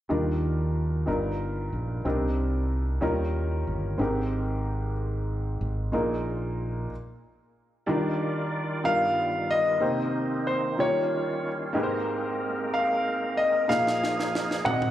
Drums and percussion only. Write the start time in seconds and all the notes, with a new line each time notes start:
13.71 snare
13.87 snare
14.04 snare
14.19 snare
14.35 snare
14.51 snare
14.66 mid tom
14.82 mid tom